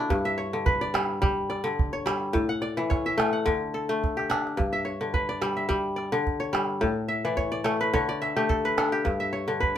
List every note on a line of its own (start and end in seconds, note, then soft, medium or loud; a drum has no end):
0.00 0.15 D3 medium
0.00 1.42 A3 medium
0.00 0.44 D4 medium
0.00 1.39 E4 medium
0.00 0.16 F#4 medium
0.00 0.96 G4 medium
0.00 0.46 A4 medium
0.00 0.21 B4 medium
0.10 2.39 G2 medium
0.10 calabash thump medium
0.25 1.29 E5 medium
0.38 0.87 C#5 medium
0.53 1.63 D3 medium
0.66 1.89 B4 medium
0.66 calabash thump medium
0.81 1.49 D5 medium
0.94 1.21 G3 medium
0.94 calabash click medium
1.22 1.69 G3 medium
1.22 calabash thump medium
1.50 1.99 D5 medium
1.50 calabash click soft
1.64 2.39 D3 medium
1.64 calabash click soft
1.79 calabash thump medium
1.93 2.68 C#5 medium
2.06 2.39 G3 medium
2.06 calabash click medium
2.33 3.50 A2 medium
2.33 calabash thump medium
2.49 3.32 F#5 medium
2.49 calabash click soft
2.62 3.73 D5 medium
2.62 calabash click soft
2.77 3.50 E3 medium
2.77 calabash click soft
2.90 3.52 C#5 medium
2.90 calabash thump medium
2.90 calabash click soft
3.06 4.09 E5 medium
3.06 calabash click soft
3.18 3.89 A3 medium
3.18 calabash click medium
3.33 4.23 F#5 medium
3.46 4.62 D3 medium
3.46 calabash thump medium
3.46 calabash click soft
3.74 5.06 A4 medium
3.89 5.89 A3 medium
4.04 calabash thump medium
4.17 5.58 G4 medium
4.17 calabash click soft
4.30 4.91 D4 medium
4.30 calabash click medium
4.47 calabash click soft
4.57 6.85 G2 medium
4.57 calabash thump medium
4.73 5.56 E5 medium
4.85 5.35 C#5 medium
5.01 6.11 D3 medium
5.14 6.37 B4 medium
5.14 calabash thump medium
5.29 5.96 D5 medium
5.41 5.68 G3 medium
5.41 calabash click medium
5.57 6.60 E5 medium
5.69 6.16 G3 medium
5.69 calabash thump medium
5.96 6.46 D5 medium
5.96 calabash click soft
6.12 6.85 D3 medium
6.12 calabash click soft
6.27 calabash thump medium
6.40 7.31 C#5 medium
6.53 6.85 G3 medium
6.53 calabash click medium
6.81 7.97 A2 medium
6.81 calabash thump medium
7.08 8.12 E5 medium
7.25 7.97 E3 medium
7.25 7.51 D5 medium
7.37 7.64 C#5 medium
7.37 calabash thump medium
7.52 8.00 D5 medium
7.64 8.36 A3 medium
7.64 7.93 C#5 medium
7.64 calabash click medium
7.81 8.65 B4 medium
7.93 9.09 D3 medium
7.93 8.84 C#5 medium
7.93 calabash thump medium
8.09 9.19 D5 medium
8.22 9.20 E5 medium
8.22 calabash click soft
8.37 9.78 A3 medium
8.37 8.92 G4 medium
8.37 calabash click soft
8.49 8.77 A4 medium
8.49 calabash thump medium
8.65 9.60 B4 medium
8.78 9.39 D4 medium
8.78 9.78 A4 medium
8.78 calabash click medium
8.92 9.78 G4 medium
9.05 9.78 G2 medium
9.05 calabash thump medium
9.20 9.78 E5 medium
9.33 9.78 C#5 medium
9.48 9.78 D3 medium
9.60 9.78 B4 medium
9.60 calabash thump medium